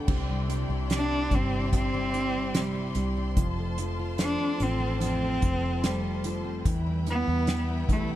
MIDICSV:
0, 0, Header, 1, 7, 480
1, 0, Start_track
1, 0, Key_signature, 0, "major"
1, 0, Tempo, 821918
1, 48, Time_signature, 4, 2, 24, 8
1, 4763, End_track
2, 0, Start_track
2, 0, Title_t, "String section"
2, 0, Program_c, 0, 48
2, 0, Note_on_c, 0, 79, 61
2, 52, Note_on_c, 0, 64, 69
2, 55, Note_on_c, 0, 84, 80
2, 58, Note_on_c, 0, 74, 63
2, 1951, Note_off_c, 0, 64, 0
2, 1952, Note_off_c, 0, 79, 0
2, 1954, Note_off_c, 0, 74, 0
2, 1962, Note_on_c, 0, 72, 66
2, 1962, Note_on_c, 0, 81, 63
2, 1966, Note_on_c, 0, 65, 69
2, 3866, Note_off_c, 0, 72, 0
2, 3866, Note_off_c, 0, 81, 0
2, 3868, Note_off_c, 0, 65, 0
2, 3868, Note_off_c, 0, 84, 0
2, 3880, Note_on_c, 0, 79, 61
2, 3881, Note_on_c, 0, 71, 62
2, 3881, Note_on_c, 0, 83, 76
2, 3885, Note_on_c, 0, 64, 70
2, 4763, Note_off_c, 0, 64, 0
2, 4763, Note_off_c, 0, 71, 0
2, 4763, Note_off_c, 0, 79, 0
2, 4763, Note_off_c, 0, 83, 0
2, 4763, End_track
3, 0, Start_track
3, 0, Title_t, "Cello"
3, 0, Program_c, 1, 42
3, 553, Note_on_c, 1, 62, 97
3, 788, Note_on_c, 1, 60, 90
3, 797, Note_off_c, 1, 62, 0
3, 1016, Note_off_c, 1, 60, 0
3, 1019, Note_on_c, 1, 60, 99
3, 1502, Note_on_c, 1, 55, 72
3, 1511, Note_off_c, 1, 60, 0
3, 1855, Note_off_c, 1, 55, 0
3, 2465, Note_on_c, 1, 62, 91
3, 2701, Note_on_c, 1, 60, 88
3, 2709, Note_off_c, 1, 62, 0
3, 2934, Note_off_c, 1, 60, 0
3, 2939, Note_on_c, 1, 60, 94
3, 3417, Note_on_c, 1, 55, 70
3, 3426, Note_off_c, 1, 60, 0
3, 3772, Note_off_c, 1, 55, 0
3, 4148, Note_on_c, 1, 59, 105
3, 4595, Note_off_c, 1, 59, 0
3, 4626, Note_on_c, 1, 57, 83
3, 4730, Note_off_c, 1, 57, 0
3, 4763, End_track
4, 0, Start_track
4, 0, Title_t, "Steel-string acoustic guitar"
4, 0, Program_c, 2, 25
4, 0, Note_on_c, 2, 50, 69
4, 0, Note_on_c, 2, 57, 52
4, 0, Note_on_c, 2, 59, 50
4, 0, Note_on_c, 2, 67, 52
4, 49, Note_on_c, 2, 48, 76
4, 97, Note_off_c, 2, 57, 0
4, 98, Note_off_c, 2, 59, 0
4, 171, Note_on_c, 2, 55, 53
4, 288, Note_on_c, 2, 62, 55
4, 407, Note_off_c, 2, 67, 0
4, 409, Note_on_c, 2, 64, 60
4, 427, Note_off_c, 2, 50, 0
4, 522, Note_off_c, 2, 55, 0
4, 529, Note_on_c, 2, 55, 54
4, 643, Note_off_c, 2, 62, 0
4, 650, Note_on_c, 2, 62, 53
4, 767, Note_off_c, 2, 55, 0
4, 774, Note_on_c, 2, 55, 53
4, 889, Note_off_c, 2, 62, 0
4, 899, Note_on_c, 2, 62, 57
4, 1006, Note_off_c, 2, 48, 0
4, 1013, Note_on_c, 2, 48, 75
4, 1126, Note_off_c, 2, 55, 0
4, 1133, Note_on_c, 2, 55, 53
4, 1247, Note_off_c, 2, 62, 0
4, 1254, Note_on_c, 2, 62, 56
4, 1367, Note_off_c, 2, 64, 0
4, 1374, Note_on_c, 2, 64, 57
4, 1486, Note_off_c, 2, 55, 0
4, 1493, Note_on_c, 2, 55, 59
4, 1602, Note_off_c, 2, 62, 0
4, 1609, Note_on_c, 2, 62, 53
4, 1725, Note_off_c, 2, 55, 0
4, 1732, Note_on_c, 2, 55, 54
4, 1841, Note_off_c, 2, 62, 0
4, 1848, Note_on_c, 2, 62, 56
4, 1969, Note_on_c, 2, 41, 71
4, 2016, Note_off_c, 2, 62, 0
4, 2018, Note_off_c, 2, 48, 0
4, 2018, Note_off_c, 2, 55, 0
4, 2019, Note_off_c, 2, 64, 0
4, 2093, Note_on_c, 2, 57, 54
4, 2210, Note_on_c, 2, 60, 54
4, 2331, Note_on_c, 2, 65, 57
4, 2443, Note_off_c, 2, 57, 0
4, 2450, Note_on_c, 2, 57, 53
4, 2560, Note_off_c, 2, 60, 0
4, 2567, Note_on_c, 2, 60, 55
4, 2675, Note_off_c, 2, 57, 0
4, 2682, Note_on_c, 2, 57, 55
4, 2795, Note_off_c, 2, 60, 0
4, 2802, Note_on_c, 2, 60, 54
4, 2915, Note_off_c, 2, 41, 0
4, 2922, Note_on_c, 2, 41, 75
4, 3037, Note_off_c, 2, 57, 0
4, 3044, Note_on_c, 2, 57, 53
4, 3153, Note_off_c, 2, 60, 0
4, 3274, Note_off_c, 2, 65, 0
4, 3281, Note_on_c, 2, 65, 56
4, 3398, Note_off_c, 2, 57, 0
4, 3405, Note_on_c, 2, 57, 54
4, 3523, Note_on_c, 2, 60, 47
4, 3639, Note_off_c, 2, 57, 0
4, 3646, Note_on_c, 2, 57, 52
4, 3755, Note_off_c, 2, 60, 0
4, 3762, Note_on_c, 2, 60, 57
4, 3884, Note_off_c, 2, 41, 0
4, 3886, Note_on_c, 2, 40, 70
4, 3933, Note_off_c, 2, 60, 0
4, 3933, Note_off_c, 2, 65, 0
4, 3935, Note_off_c, 2, 57, 0
4, 4008, Note_on_c, 2, 55, 54
4, 4129, Note_on_c, 2, 59, 54
4, 4250, Note_on_c, 2, 64, 64
4, 4367, Note_off_c, 2, 55, 0
4, 4369, Note_on_c, 2, 55, 62
4, 4487, Note_off_c, 2, 59, 0
4, 4490, Note_on_c, 2, 59, 53
4, 4605, Note_off_c, 2, 55, 0
4, 4607, Note_on_c, 2, 55, 58
4, 4725, Note_off_c, 2, 59, 0
4, 4728, Note_on_c, 2, 59, 52
4, 4763, Note_off_c, 2, 40, 0
4, 4763, Note_off_c, 2, 55, 0
4, 4763, Note_off_c, 2, 59, 0
4, 4763, Note_off_c, 2, 64, 0
4, 4763, End_track
5, 0, Start_track
5, 0, Title_t, "Grand piano"
5, 0, Program_c, 3, 0
5, 0, Control_c, 3, 64, 127
5, 0, Note_on_c, 3, 50, 52
5, 50, Note_on_c, 3, 48, 60
5, 54, Control_c, 3, 64, 0
5, 59, Note_off_c, 3, 50, 0
5, 142, Control_c, 3, 64, 127
5, 285, Note_on_c, 3, 55, 48
5, 522, Note_off_c, 3, 48, 0
5, 531, Note_on_c, 3, 48, 48
5, 760, Note_off_c, 3, 55, 0
5, 769, Note_on_c, 3, 55, 52
5, 1003, Note_off_c, 3, 48, 0
5, 1012, Note_on_c, 3, 48, 54
5, 1242, Note_off_c, 3, 55, 0
5, 1250, Note_on_c, 3, 55, 53
5, 1484, Note_off_c, 3, 48, 0
5, 1493, Note_on_c, 3, 48, 55
5, 1720, Note_off_c, 3, 55, 0
5, 1728, Note_on_c, 3, 55, 57
5, 1956, Note_off_c, 3, 48, 0
5, 1961, Note_off_c, 3, 55, 0
5, 1967, Note_on_c, 3, 53, 60
5, 1975, Control_c, 3, 64, 0
5, 2066, Control_c, 3, 64, 127
5, 2203, Note_off_c, 3, 53, 0
5, 2212, Note_on_c, 3, 53, 56
5, 2438, Note_off_c, 3, 53, 0
5, 2447, Note_on_c, 3, 53, 51
5, 2679, Note_off_c, 3, 53, 0
5, 2688, Note_on_c, 3, 53, 50
5, 2912, Note_off_c, 3, 53, 0
5, 2921, Note_on_c, 3, 53, 55
5, 3158, Note_off_c, 3, 53, 0
5, 3167, Note_on_c, 3, 53, 53
5, 3397, Note_off_c, 3, 53, 0
5, 3406, Note_on_c, 3, 53, 51
5, 3639, Note_off_c, 3, 53, 0
5, 3648, Note_on_c, 3, 53, 52
5, 3881, Note_off_c, 3, 53, 0
5, 3887, Note_on_c, 3, 52, 61
5, 3895, Control_c, 3, 64, 0
5, 4002, Control_c, 3, 64, 127
5, 4120, Note_off_c, 3, 52, 0
5, 4129, Note_on_c, 3, 52, 53
5, 4358, Note_off_c, 3, 52, 0
5, 4366, Note_on_c, 3, 52, 49
5, 4601, Note_off_c, 3, 52, 0
5, 4610, Note_on_c, 3, 52, 52
5, 4763, Note_off_c, 3, 52, 0
5, 4763, End_track
6, 0, Start_track
6, 0, Title_t, "Fingered electric bass"
6, 0, Program_c, 4, 33
6, 47, Note_on_c, 4, 36, 94
6, 384, Note_off_c, 4, 36, 0
6, 404, Note_on_c, 4, 36, 73
6, 743, Note_off_c, 4, 36, 0
6, 764, Note_on_c, 4, 31, 75
6, 1703, Note_off_c, 4, 31, 0
6, 1724, Note_on_c, 4, 36, 75
6, 1949, Note_off_c, 4, 36, 0
6, 1970, Note_on_c, 4, 29, 91
6, 2546, Note_off_c, 4, 29, 0
6, 2687, Note_on_c, 4, 33, 82
6, 3144, Note_off_c, 4, 33, 0
6, 3170, Note_on_c, 4, 29, 87
6, 3865, Note_off_c, 4, 29, 0
6, 3888, Note_on_c, 4, 40, 91
6, 4225, Note_off_c, 4, 40, 0
6, 4250, Note_on_c, 4, 40, 82
6, 4607, Note_off_c, 4, 40, 0
6, 4607, Note_on_c, 4, 35, 80
6, 4763, Note_off_c, 4, 35, 0
6, 4763, End_track
7, 0, Start_track
7, 0, Title_t, "Drums"
7, 46, Note_on_c, 9, 49, 73
7, 47, Note_on_c, 9, 36, 92
7, 104, Note_off_c, 9, 49, 0
7, 106, Note_off_c, 9, 36, 0
7, 289, Note_on_c, 9, 42, 69
7, 348, Note_off_c, 9, 42, 0
7, 525, Note_on_c, 9, 42, 71
7, 530, Note_on_c, 9, 38, 98
7, 583, Note_off_c, 9, 42, 0
7, 589, Note_off_c, 9, 38, 0
7, 766, Note_on_c, 9, 36, 79
7, 767, Note_on_c, 9, 42, 61
7, 824, Note_off_c, 9, 36, 0
7, 825, Note_off_c, 9, 42, 0
7, 1009, Note_on_c, 9, 36, 73
7, 1009, Note_on_c, 9, 42, 75
7, 1067, Note_off_c, 9, 36, 0
7, 1067, Note_off_c, 9, 42, 0
7, 1249, Note_on_c, 9, 42, 62
7, 1307, Note_off_c, 9, 42, 0
7, 1486, Note_on_c, 9, 42, 89
7, 1488, Note_on_c, 9, 38, 115
7, 1545, Note_off_c, 9, 42, 0
7, 1546, Note_off_c, 9, 38, 0
7, 1721, Note_on_c, 9, 42, 73
7, 1780, Note_off_c, 9, 42, 0
7, 1966, Note_on_c, 9, 42, 96
7, 1967, Note_on_c, 9, 36, 95
7, 2025, Note_off_c, 9, 36, 0
7, 2025, Note_off_c, 9, 42, 0
7, 2206, Note_on_c, 9, 42, 69
7, 2265, Note_off_c, 9, 42, 0
7, 2442, Note_on_c, 9, 42, 71
7, 2447, Note_on_c, 9, 38, 104
7, 2500, Note_off_c, 9, 42, 0
7, 2506, Note_off_c, 9, 38, 0
7, 2685, Note_on_c, 9, 42, 63
7, 2744, Note_off_c, 9, 42, 0
7, 2927, Note_on_c, 9, 42, 78
7, 2986, Note_off_c, 9, 42, 0
7, 3166, Note_on_c, 9, 42, 67
7, 3169, Note_on_c, 9, 36, 84
7, 3225, Note_off_c, 9, 42, 0
7, 3227, Note_off_c, 9, 36, 0
7, 3408, Note_on_c, 9, 42, 94
7, 3410, Note_on_c, 9, 38, 118
7, 3467, Note_off_c, 9, 42, 0
7, 3469, Note_off_c, 9, 38, 0
7, 3645, Note_on_c, 9, 42, 76
7, 3703, Note_off_c, 9, 42, 0
7, 3886, Note_on_c, 9, 36, 93
7, 3886, Note_on_c, 9, 42, 84
7, 3945, Note_off_c, 9, 36, 0
7, 3945, Note_off_c, 9, 42, 0
7, 4126, Note_on_c, 9, 42, 68
7, 4184, Note_off_c, 9, 42, 0
7, 4363, Note_on_c, 9, 42, 66
7, 4368, Note_on_c, 9, 38, 96
7, 4421, Note_off_c, 9, 42, 0
7, 4427, Note_off_c, 9, 38, 0
7, 4607, Note_on_c, 9, 36, 82
7, 4610, Note_on_c, 9, 42, 64
7, 4665, Note_off_c, 9, 36, 0
7, 4668, Note_off_c, 9, 42, 0
7, 4763, End_track
0, 0, End_of_file